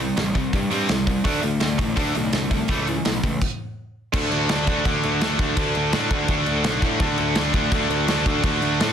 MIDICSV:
0, 0, Header, 1, 4, 480
1, 0, Start_track
1, 0, Tempo, 359281
1, 1682, Time_signature, 4, 2, 24, 8
1, 11925, End_track
2, 0, Start_track
2, 0, Title_t, "Distorted electric guitar"
2, 0, Program_c, 0, 30
2, 0, Note_on_c, 0, 48, 65
2, 0, Note_on_c, 0, 55, 76
2, 211, Note_off_c, 0, 48, 0
2, 213, Note_off_c, 0, 55, 0
2, 228, Note_on_c, 0, 48, 75
2, 239, Note_on_c, 0, 55, 78
2, 446, Note_off_c, 0, 48, 0
2, 455, Note_off_c, 0, 55, 0
2, 462, Note_on_c, 0, 48, 66
2, 473, Note_on_c, 0, 55, 73
2, 687, Note_off_c, 0, 48, 0
2, 693, Note_off_c, 0, 55, 0
2, 717, Note_on_c, 0, 48, 66
2, 720, Note_on_c, 0, 55, 75
2, 927, Note_off_c, 0, 48, 0
2, 936, Note_off_c, 0, 55, 0
2, 943, Note_on_c, 0, 48, 86
2, 954, Note_on_c, 0, 55, 97
2, 963, Note_on_c, 0, 60, 95
2, 1178, Note_off_c, 0, 48, 0
2, 1178, Note_off_c, 0, 55, 0
2, 1188, Note_off_c, 0, 60, 0
2, 1194, Note_on_c, 0, 55, 78
2, 1195, Note_on_c, 0, 48, 76
2, 1414, Note_off_c, 0, 48, 0
2, 1414, Note_off_c, 0, 55, 0
2, 1434, Note_on_c, 0, 48, 65
2, 1439, Note_on_c, 0, 55, 80
2, 1654, Note_off_c, 0, 48, 0
2, 1657, Note_off_c, 0, 55, 0
2, 1661, Note_on_c, 0, 50, 81
2, 1666, Note_on_c, 0, 57, 90
2, 1680, Note_on_c, 0, 62, 96
2, 1881, Note_off_c, 0, 50, 0
2, 1889, Note_off_c, 0, 57, 0
2, 1897, Note_on_c, 0, 50, 65
2, 1905, Note_on_c, 0, 57, 70
2, 1907, Note_off_c, 0, 62, 0
2, 2126, Note_off_c, 0, 50, 0
2, 2130, Note_off_c, 0, 57, 0
2, 2143, Note_on_c, 0, 50, 72
2, 2146, Note_on_c, 0, 57, 80
2, 2366, Note_off_c, 0, 50, 0
2, 2371, Note_off_c, 0, 57, 0
2, 2382, Note_on_c, 0, 50, 66
2, 2389, Note_on_c, 0, 57, 72
2, 2602, Note_off_c, 0, 50, 0
2, 2613, Note_off_c, 0, 57, 0
2, 2618, Note_on_c, 0, 50, 77
2, 2629, Note_on_c, 0, 57, 85
2, 2632, Note_on_c, 0, 62, 101
2, 2852, Note_off_c, 0, 50, 0
2, 2859, Note_off_c, 0, 57, 0
2, 2864, Note_off_c, 0, 62, 0
2, 2868, Note_on_c, 0, 50, 74
2, 2875, Note_on_c, 0, 57, 82
2, 3093, Note_off_c, 0, 50, 0
2, 3097, Note_off_c, 0, 57, 0
2, 3113, Note_on_c, 0, 50, 80
2, 3115, Note_on_c, 0, 57, 81
2, 3336, Note_off_c, 0, 50, 0
2, 3337, Note_off_c, 0, 57, 0
2, 3351, Note_on_c, 0, 50, 78
2, 3357, Note_on_c, 0, 57, 76
2, 3575, Note_off_c, 0, 50, 0
2, 3578, Note_off_c, 0, 57, 0
2, 3592, Note_on_c, 0, 45, 86
2, 3609, Note_on_c, 0, 52, 91
2, 3610, Note_on_c, 0, 57, 99
2, 3813, Note_off_c, 0, 45, 0
2, 3822, Note_off_c, 0, 52, 0
2, 3829, Note_on_c, 0, 45, 70
2, 3835, Note_off_c, 0, 57, 0
2, 3838, Note_on_c, 0, 52, 76
2, 4055, Note_off_c, 0, 45, 0
2, 4059, Note_off_c, 0, 52, 0
2, 4078, Note_on_c, 0, 45, 77
2, 4084, Note_on_c, 0, 52, 80
2, 4299, Note_off_c, 0, 45, 0
2, 4302, Note_off_c, 0, 52, 0
2, 4328, Note_on_c, 0, 45, 71
2, 4333, Note_on_c, 0, 52, 67
2, 4544, Note_off_c, 0, 45, 0
2, 4547, Note_off_c, 0, 52, 0
2, 5518, Note_on_c, 0, 50, 98
2, 5533, Note_on_c, 0, 57, 101
2, 5540, Note_on_c, 0, 62, 108
2, 6004, Note_off_c, 0, 50, 0
2, 6008, Note_off_c, 0, 57, 0
2, 6009, Note_on_c, 0, 50, 90
2, 6014, Note_on_c, 0, 57, 82
2, 6019, Note_off_c, 0, 62, 0
2, 6025, Note_on_c, 0, 62, 92
2, 6244, Note_off_c, 0, 50, 0
2, 6249, Note_on_c, 0, 50, 88
2, 6256, Note_off_c, 0, 57, 0
2, 6261, Note_on_c, 0, 57, 95
2, 6268, Note_off_c, 0, 62, 0
2, 6273, Note_on_c, 0, 62, 95
2, 6482, Note_off_c, 0, 50, 0
2, 6487, Note_on_c, 0, 50, 105
2, 6494, Note_off_c, 0, 57, 0
2, 6499, Note_on_c, 0, 57, 101
2, 6504, Note_off_c, 0, 62, 0
2, 6510, Note_on_c, 0, 62, 107
2, 6959, Note_off_c, 0, 50, 0
2, 6964, Note_on_c, 0, 50, 90
2, 6973, Note_off_c, 0, 57, 0
2, 6977, Note_off_c, 0, 62, 0
2, 6978, Note_on_c, 0, 57, 100
2, 6982, Note_on_c, 0, 62, 107
2, 7194, Note_off_c, 0, 50, 0
2, 7199, Note_on_c, 0, 50, 95
2, 7204, Note_off_c, 0, 57, 0
2, 7209, Note_on_c, 0, 57, 92
2, 7212, Note_off_c, 0, 62, 0
2, 7217, Note_on_c, 0, 62, 108
2, 7440, Note_off_c, 0, 50, 0
2, 7445, Note_on_c, 0, 50, 96
2, 7446, Note_off_c, 0, 57, 0
2, 7452, Note_on_c, 0, 57, 106
2, 7456, Note_off_c, 0, 62, 0
2, 7462, Note_on_c, 0, 62, 104
2, 7919, Note_off_c, 0, 50, 0
2, 7923, Note_off_c, 0, 57, 0
2, 7924, Note_on_c, 0, 50, 87
2, 7928, Note_on_c, 0, 57, 90
2, 7933, Note_off_c, 0, 62, 0
2, 7938, Note_on_c, 0, 62, 101
2, 8151, Note_off_c, 0, 50, 0
2, 8157, Note_on_c, 0, 50, 81
2, 8160, Note_off_c, 0, 57, 0
2, 8166, Note_on_c, 0, 57, 88
2, 8169, Note_off_c, 0, 62, 0
2, 8175, Note_on_c, 0, 62, 101
2, 8396, Note_off_c, 0, 50, 0
2, 8401, Note_on_c, 0, 50, 97
2, 8403, Note_off_c, 0, 57, 0
2, 8409, Note_on_c, 0, 57, 92
2, 8414, Note_off_c, 0, 62, 0
2, 8419, Note_on_c, 0, 62, 102
2, 8869, Note_off_c, 0, 50, 0
2, 8874, Note_on_c, 0, 50, 83
2, 8876, Note_off_c, 0, 57, 0
2, 8881, Note_on_c, 0, 57, 95
2, 8888, Note_off_c, 0, 62, 0
2, 8894, Note_on_c, 0, 62, 103
2, 9121, Note_off_c, 0, 50, 0
2, 9126, Note_on_c, 0, 50, 99
2, 9129, Note_off_c, 0, 57, 0
2, 9130, Note_off_c, 0, 62, 0
2, 9134, Note_on_c, 0, 57, 102
2, 9135, Note_on_c, 0, 62, 95
2, 9360, Note_off_c, 0, 50, 0
2, 9365, Note_on_c, 0, 50, 113
2, 9368, Note_off_c, 0, 57, 0
2, 9373, Note_on_c, 0, 57, 113
2, 9380, Note_off_c, 0, 62, 0
2, 9386, Note_on_c, 0, 62, 116
2, 9840, Note_off_c, 0, 50, 0
2, 9845, Note_on_c, 0, 50, 85
2, 9849, Note_off_c, 0, 57, 0
2, 9855, Note_on_c, 0, 57, 97
2, 9859, Note_off_c, 0, 62, 0
2, 9865, Note_on_c, 0, 62, 97
2, 10054, Note_off_c, 0, 50, 0
2, 10070, Note_on_c, 0, 50, 90
2, 10073, Note_off_c, 0, 62, 0
2, 10074, Note_off_c, 0, 57, 0
2, 10080, Note_on_c, 0, 57, 92
2, 10089, Note_on_c, 0, 62, 96
2, 10302, Note_off_c, 0, 50, 0
2, 10316, Note_off_c, 0, 62, 0
2, 10318, Note_on_c, 0, 50, 105
2, 10324, Note_off_c, 0, 57, 0
2, 10329, Note_on_c, 0, 57, 103
2, 10332, Note_on_c, 0, 62, 117
2, 10786, Note_off_c, 0, 50, 0
2, 10802, Note_off_c, 0, 62, 0
2, 10802, Note_on_c, 0, 50, 88
2, 10807, Note_off_c, 0, 57, 0
2, 10813, Note_on_c, 0, 57, 89
2, 10818, Note_on_c, 0, 62, 109
2, 11019, Note_off_c, 0, 50, 0
2, 11035, Note_on_c, 0, 50, 84
2, 11037, Note_off_c, 0, 57, 0
2, 11037, Note_off_c, 0, 62, 0
2, 11043, Note_on_c, 0, 57, 98
2, 11053, Note_on_c, 0, 62, 102
2, 11263, Note_off_c, 0, 50, 0
2, 11279, Note_off_c, 0, 62, 0
2, 11279, Note_on_c, 0, 50, 102
2, 11280, Note_off_c, 0, 57, 0
2, 11285, Note_on_c, 0, 57, 99
2, 11295, Note_on_c, 0, 62, 111
2, 11748, Note_off_c, 0, 50, 0
2, 11764, Note_off_c, 0, 57, 0
2, 11764, Note_on_c, 0, 50, 94
2, 11765, Note_off_c, 0, 62, 0
2, 11770, Note_on_c, 0, 57, 100
2, 11781, Note_on_c, 0, 62, 108
2, 11925, Note_off_c, 0, 50, 0
2, 11925, Note_off_c, 0, 57, 0
2, 11925, Note_off_c, 0, 62, 0
2, 11925, End_track
3, 0, Start_track
3, 0, Title_t, "Picked electric bass"
3, 0, Program_c, 1, 34
3, 0, Note_on_c, 1, 36, 79
3, 140, Note_off_c, 1, 36, 0
3, 242, Note_on_c, 1, 33, 86
3, 433, Note_off_c, 1, 33, 0
3, 471, Note_on_c, 1, 36, 86
3, 667, Note_off_c, 1, 36, 0
3, 711, Note_on_c, 1, 43, 92
3, 907, Note_off_c, 1, 43, 0
3, 959, Note_on_c, 1, 43, 84
3, 1152, Note_off_c, 1, 43, 0
3, 1206, Note_on_c, 1, 36, 94
3, 1590, Note_off_c, 1, 36, 0
3, 1667, Note_on_c, 1, 38, 87
3, 1866, Note_off_c, 1, 38, 0
3, 1927, Note_on_c, 1, 38, 90
3, 2118, Note_off_c, 1, 38, 0
3, 2168, Note_on_c, 1, 38, 89
3, 2359, Note_off_c, 1, 38, 0
3, 2392, Note_on_c, 1, 33, 76
3, 2590, Note_off_c, 1, 33, 0
3, 2633, Note_on_c, 1, 38, 86
3, 2831, Note_off_c, 1, 38, 0
3, 2888, Note_on_c, 1, 35, 91
3, 3079, Note_off_c, 1, 35, 0
3, 3113, Note_on_c, 1, 36, 94
3, 3503, Note_off_c, 1, 36, 0
3, 3593, Note_on_c, 1, 37, 93
3, 3984, Note_off_c, 1, 37, 0
3, 4086, Note_on_c, 1, 35, 89
3, 4279, Note_off_c, 1, 35, 0
3, 4320, Note_on_c, 1, 37, 83
3, 4516, Note_off_c, 1, 37, 0
3, 5529, Note_on_c, 1, 38, 93
3, 5758, Note_off_c, 1, 38, 0
3, 5769, Note_on_c, 1, 38, 93
3, 5998, Note_off_c, 1, 38, 0
3, 6015, Note_on_c, 1, 38, 95
3, 6241, Note_off_c, 1, 38, 0
3, 6246, Note_on_c, 1, 38, 85
3, 6476, Note_off_c, 1, 38, 0
3, 6489, Note_on_c, 1, 38, 98
3, 6717, Note_off_c, 1, 38, 0
3, 6735, Note_on_c, 1, 38, 100
3, 6960, Note_off_c, 1, 38, 0
3, 6982, Note_on_c, 1, 38, 95
3, 7195, Note_off_c, 1, 38, 0
3, 7203, Note_on_c, 1, 38, 90
3, 7433, Note_off_c, 1, 38, 0
3, 7441, Note_on_c, 1, 38, 101
3, 7672, Note_off_c, 1, 38, 0
3, 7694, Note_on_c, 1, 38, 103
3, 7919, Note_off_c, 1, 38, 0
3, 7934, Note_on_c, 1, 45, 98
3, 8153, Note_off_c, 1, 45, 0
3, 8161, Note_on_c, 1, 38, 83
3, 8391, Note_off_c, 1, 38, 0
3, 8398, Note_on_c, 1, 38, 103
3, 8630, Note_off_c, 1, 38, 0
3, 8650, Note_on_c, 1, 38, 98
3, 8867, Note_off_c, 1, 38, 0
3, 8875, Note_on_c, 1, 35, 112
3, 9108, Note_off_c, 1, 35, 0
3, 9117, Note_on_c, 1, 45, 97
3, 9349, Note_off_c, 1, 45, 0
3, 9354, Note_on_c, 1, 38, 100
3, 9587, Note_off_c, 1, 38, 0
3, 9608, Note_on_c, 1, 38, 90
3, 9834, Note_off_c, 1, 38, 0
3, 9843, Note_on_c, 1, 38, 98
3, 10063, Note_off_c, 1, 38, 0
3, 10071, Note_on_c, 1, 38, 88
3, 10302, Note_off_c, 1, 38, 0
3, 10310, Note_on_c, 1, 38, 107
3, 10540, Note_off_c, 1, 38, 0
3, 10548, Note_on_c, 1, 38, 99
3, 10783, Note_off_c, 1, 38, 0
3, 10794, Note_on_c, 1, 38, 105
3, 11026, Note_off_c, 1, 38, 0
3, 11033, Note_on_c, 1, 38, 99
3, 11266, Note_off_c, 1, 38, 0
3, 11271, Note_on_c, 1, 38, 96
3, 11505, Note_off_c, 1, 38, 0
3, 11516, Note_on_c, 1, 38, 89
3, 11747, Note_off_c, 1, 38, 0
3, 11754, Note_on_c, 1, 45, 96
3, 11925, Note_off_c, 1, 45, 0
3, 11925, End_track
4, 0, Start_track
4, 0, Title_t, "Drums"
4, 2, Note_on_c, 9, 46, 50
4, 135, Note_off_c, 9, 46, 0
4, 228, Note_on_c, 9, 46, 75
4, 236, Note_on_c, 9, 38, 118
4, 362, Note_off_c, 9, 46, 0
4, 370, Note_off_c, 9, 38, 0
4, 470, Note_on_c, 9, 36, 81
4, 476, Note_on_c, 9, 46, 48
4, 603, Note_off_c, 9, 36, 0
4, 610, Note_off_c, 9, 46, 0
4, 710, Note_on_c, 9, 36, 92
4, 711, Note_on_c, 9, 46, 63
4, 844, Note_off_c, 9, 36, 0
4, 844, Note_off_c, 9, 46, 0
4, 954, Note_on_c, 9, 46, 55
4, 1087, Note_off_c, 9, 46, 0
4, 1187, Note_on_c, 9, 46, 74
4, 1195, Note_on_c, 9, 38, 108
4, 1320, Note_off_c, 9, 46, 0
4, 1328, Note_off_c, 9, 38, 0
4, 1430, Note_on_c, 9, 36, 91
4, 1430, Note_on_c, 9, 46, 63
4, 1564, Note_off_c, 9, 36, 0
4, 1564, Note_off_c, 9, 46, 0
4, 1669, Note_on_c, 9, 36, 101
4, 1672, Note_on_c, 9, 46, 77
4, 1803, Note_off_c, 9, 36, 0
4, 1806, Note_off_c, 9, 46, 0
4, 1911, Note_on_c, 9, 46, 52
4, 2044, Note_off_c, 9, 46, 0
4, 2145, Note_on_c, 9, 46, 82
4, 2153, Note_on_c, 9, 38, 107
4, 2278, Note_off_c, 9, 46, 0
4, 2286, Note_off_c, 9, 38, 0
4, 2389, Note_on_c, 9, 36, 87
4, 2394, Note_on_c, 9, 46, 60
4, 2523, Note_off_c, 9, 36, 0
4, 2527, Note_off_c, 9, 46, 0
4, 2632, Note_on_c, 9, 36, 91
4, 2638, Note_on_c, 9, 46, 77
4, 2765, Note_off_c, 9, 36, 0
4, 2772, Note_off_c, 9, 46, 0
4, 2871, Note_on_c, 9, 46, 57
4, 3004, Note_off_c, 9, 46, 0
4, 3109, Note_on_c, 9, 46, 79
4, 3117, Note_on_c, 9, 38, 109
4, 3242, Note_off_c, 9, 46, 0
4, 3250, Note_off_c, 9, 38, 0
4, 3353, Note_on_c, 9, 36, 93
4, 3354, Note_on_c, 9, 46, 64
4, 3487, Note_off_c, 9, 36, 0
4, 3488, Note_off_c, 9, 46, 0
4, 3582, Note_on_c, 9, 46, 76
4, 3593, Note_on_c, 9, 36, 105
4, 3716, Note_off_c, 9, 46, 0
4, 3727, Note_off_c, 9, 36, 0
4, 3838, Note_on_c, 9, 46, 51
4, 3972, Note_off_c, 9, 46, 0
4, 4077, Note_on_c, 9, 46, 77
4, 4085, Note_on_c, 9, 38, 108
4, 4211, Note_off_c, 9, 46, 0
4, 4219, Note_off_c, 9, 38, 0
4, 4322, Note_on_c, 9, 36, 83
4, 4327, Note_on_c, 9, 46, 56
4, 4456, Note_off_c, 9, 36, 0
4, 4460, Note_off_c, 9, 46, 0
4, 4563, Note_on_c, 9, 36, 101
4, 4569, Note_on_c, 9, 49, 87
4, 4697, Note_off_c, 9, 36, 0
4, 4703, Note_off_c, 9, 49, 0
4, 5525, Note_on_c, 9, 36, 118
4, 5526, Note_on_c, 9, 49, 113
4, 5526, Note_on_c, 9, 57, 94
4, 5659, Note_off_c, 9, 36, 0
4, 5659, Note_off_c, 9, 49, 0
4, 5659, Note_off_c, 9, 57, 0
4, 5767, Note_on_c, 9, 57, 64
4, 5901, Note_off_c, 9, 57, 0
4, 5999, Note_on_c, 9, 57, 98
4, 6007, Note_on_c, 9, 38, 127
4, 6132, Note_off_c, 9, 57, 0
4, 6140, Note_off_c, 9, 38, 0
4, 6241, Note_on_c, 9, 57, 73
4, 6244, Note_on_c, 9, 36, 96
4, 6374, Note_off_c, 9, 57, 0
4, 6377, Note_off_c, 9, 36, 0
4, 6485, Note_on_c, 9, 36, 106
4, 6485, Note_on_c, 9, 57, 89
4, 6618, Note_off_c, 9, 36, 0
4, 6619, Note_off_c, 9, 57, 0
4, 6724, Note_on_c, 9, 57, 70
4, 6858, Note_off_c, 9, 57, 0
4, 6963, Note_on_c, 9, 57, 93
4, 6971, Note_on_c, 9, 38, 124
4, 7097, Note_off_c, 9, 57, 0
4, 7105, Note_off_c, 9, 38, 0
4, 7203, Note_on_c, 9, 36, 101
4, 7203, Note_on_c, 9, 57, 75
4, 7336, Note_off_c, 9, 36, 0
4, 7336, Note_off_c, 9, 57, 0
4, 7441, Note_on_c, 9, 36, 118
4, 7443, Note_on_c, 9, 57, 90
4, 7575, Note_off_c, 9, 36, 0
4, 7576, Note_off_c, 9, 57, 0
4, 7679, Note_on_c, 9, 57, 61
4, 7813, Note_off_c, 9, 57, 0
4, 7916, Note_on_c, 9, 57, 96
4, 7924, Note_on_c, 9, 38, 121
4, 8050, Note_off_c, 9, 57, 0
4, 8058, Note_off_c, 9, 38, 0
4, 8159, Note_on_c, 9, 36, 92
4, 8163, Note_on_c, 9, 57, 68
4, 8293, Note_off_c, 9, 36, 0
4, 8296, Note_off_c, 9, 57, 0
4, 8391, Note_on_c, 9, 57, 82
4, 8398, Note_on_c, 9, 36, 106
4, 8525, Note_off_c, 9, 57, 0
4, 8531, Note_off_c, 9, 36, 0
4, 8633, Note_on_c, 9, 57, 69
4, 8766, Note_off_c, 9, 57, 0
4, 8871, Note_on_c, 9, 57, 92
4, 8879, Note_on_c, 9, 38, 124
4, 9005, Note_off_c, 9, 57, 0
4, 9013, Note_off_c, 9, 38, 0
4, 9114, Note_on_c, 9, 36, 97
4, 9114, Note_on_c, 9, 57, 76
4, 9247, Note_off_c, 9, 57, 0
4, 9248, Note_off_c, 9, 36, 0
4, 9351, Note_on_c, 9, 57, 91
4, 9353, Note_on_c, 9, 36, 127
4, 9484, Note_off_c, 9, 57, 0
4, 9486, Note_off_c, 9, 36, 0
4, 9587, Note_on_c, 9, 57, 67
4, 9720, Note_off_c, 9, 57, 0
4, 9823, Note_on_c, 9, 57, 100
4, 9832, Note_on_c, 9, 38, 127
4, 9957, Note_off_c, 9, 57, 0
4, 9965, Note_off_c, 9, 38, 0
4, 10071, Note_on_c, 9, 36, 92
4, 10071, Note_on_c, 9, 57, 76
4, 10204, Note_off_c, 9, 57, 0
4, 10205, Note_off_c, 9, 36, 0
4, 10310, Note_on_c, 9, 57, 93
4, 10312, Note_on_c, 9, 36, 114
4, 10444, Note_off_c, 9, 57, 0
4, 10445, Note_off_c, 9, 36, 0
4, 10559, Note_on_c, 9, 57, 70
4, 10692, Note_off_c, 9, 57, 0
4, 10795, Note_on_c, 9, 57, 96
4, 10803, Note_on_c, 9, 38, 117
4, 10929, Note_off_c, 9, 57, 0
4, 10937, Note_off_c, 9, 38, 0
4, 11034, Note_on_c, 9, 36, 100
4, 11041, Note_on_c, 9, 57, 78
4, 11168, Note_off_c, 9, 36, 0
4, 11174, Note_off_c, 9, 57, 0
4, 11271, Note_on_c, 9, 36, 119
4, 11274, Note_on_c, 9, 57, 96
4, 11405, Note_off_c, 9, 36, 0
4, 11407, Note_off_c, 9, 57, 0
4, 11518, Note_on_c, 9, 57, 68
4, 11651, Note_off_c, 9, 57, 0
4, 11761, Note_on_c, 9, 57, 92
4, 11770, Note_on_c, 9, 38, 120
4, 11895, Note_off_c, 9, 57, 0
4, 11903, Note_off_c, 9, 38, 0
4, 11925, End_track
0, 0, End_of_file